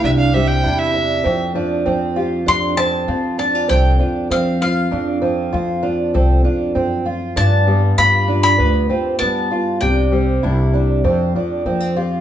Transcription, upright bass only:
\new Staff \with { instrumentName = "Upright bass" } { \clef bass \time 4/4 \key f \major \tempo 4 = 98 c,4 e,4 f,8 r8 f4 | f,4 f,4 c,8 r8 f4 | f,4 f,4 c,8 r8 ges,4 | g,4 g,4 d,8 r8 g4 |
c,4 c,4 f,8 r8 f4 | }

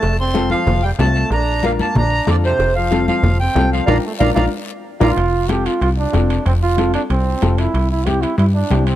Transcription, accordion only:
\new Staff \with { instrumentName = "Accordion" } { \time 4/4 \key f \major \tempo 4 = 187 a''8 c'''4 f''4 g''8 a''4 | bes''4 f''8 a''8 bes''4 d''8 c''8~ | c''8 f''4 f''4 g''4 f''8 | <d'' f'' bes''>8 r8 <d'' f'' bes''>8 <d'' f'' bes''>8 r4. <d'' f'' bes''>8 |
r1 | r1 | r1 | }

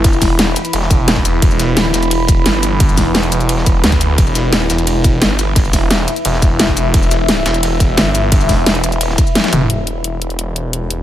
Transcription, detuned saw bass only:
\new Staff \with { instrumentName = "Detuned saw bass" } { \clef bass \time 4/4 \key e \minor \tempo 4 = 174 g,,8 e,,4 r8 e,,4. e,,8 | e,,4. e,,4. g,,4~ | g,,8 e,,4 e,,4. d,4 | e,,4. e,,4. g,,4~ |
g,,8 e,,4 r8 e,,4. e,,8 | e,,4. e,,4. g,,4~ | g,,8 e,,4 e,,4 r4 e,,8 | e,,1 | }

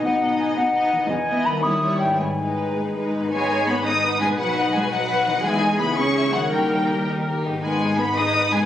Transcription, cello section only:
\new Staff \with { instrumentName = "Cello section" } { \clef bass \time 6/8 \key gis \minor \tempo 4. = 112 b,4. b,4. | e,4. dis,4. | gis,4. gis,4. | gis4 b8 dis'4 gis8 |
fis4 gis8 fis4. | gis4 b8 cis'4 fis8 | g4. r4. | gis4 b8 dis'4 gis8 | }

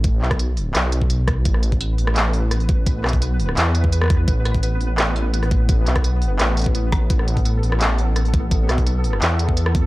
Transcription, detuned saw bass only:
\new Staff \with { instrumentName = "Detuned saw bass" } { \clef bass \time 4/4 \key c \major \tempo 4 = 170 a,,8 b,,4. b,,2 | a,,4. a,,2~ a,,8~ | a,,8 b,,4. e,2 | a,,4. a,,2~ a,,8~ |
a,,8 b,,4. a,,4 a,,4 | a,,4. a,,2~ a,,8~ | a,,8 b,,4. e,2 | }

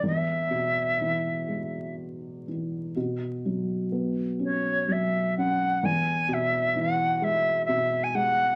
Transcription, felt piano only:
\new Staff \with { instrumentName = "Felt piano" } { \clef bass \time 6/8 \key e \major \tempo 4. = 42 e,8 b,8 e8 gis4 e8 | b,8 fis8 b8 cis'8 fis8 cis'8 | e,8 b,8 e8 gis8 b,8 gis8 | }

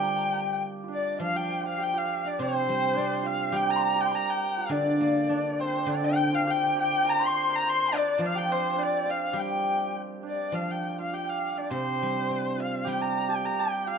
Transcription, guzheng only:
\new Staff \with { instrumentName = "Guzheng" } { \clef bass \time 2/4 \tempo 4 = 103 <d g>2 | f2 | c8 g8 c'4 | g2 |
d8 bes8 d'4 | d2~ | d4 r4 | f2 |
g2 | f2 | c8 g8 c'4 | g2 | }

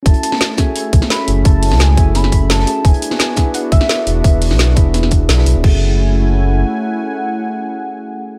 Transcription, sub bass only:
\new Staff \with { instrumentName = "Sub bass" } { \clef bass \time 4/4 \key fis \minor \tempo 4 = 172 fis,,16 r2 r16 b,,16 r8. fis,,8 | fis,,8. cis,8. fis,,2 r8 | e,,16 r2 r16 gis,,16 r8. e,,8 | e,,8. b,,8. e,,4. b,,8 b,,16 d,,16 |
fis,,2. r4 | r1 | }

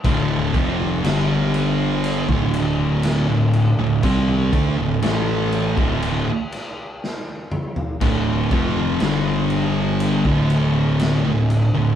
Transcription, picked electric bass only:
\new Staff \with { instrumentName = "Picked electric bass" } { \clef bass \time 4/4 \key d \minor \tempo 4 = 60 d,,8 f,,8 g,,4~ g,,16 d,,4 d,,8 d,,16 | c,8 d,16 d,,16 a,,8. d,,8 r4. r16 | d,,8 f,,8 g,,4~ g,,16 d,,4 d,,8 d,,16 | }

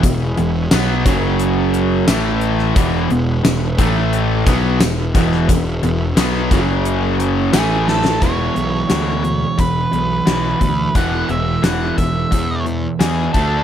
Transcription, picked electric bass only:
\new Staff \with { instrumentName = "Picked electric bass" } { \clef bass \time 4/4 \key e \mixolydian \tempo 4 = 88 e,,8 e,,8 b,,8 fis,,4. a,,4 | e,,8 e,,8 e,,8 a,,4 b,,8 e,,8 e,,8 | e,,8 e,,8 b,,8 fis,,4. a,,4 | e,,8 b,,8 d,4 e,,8 b,,8 b,,8 d,8 |
e,,8 e,,8 e,,8 e,,8 e,4 e,8 d,8 | }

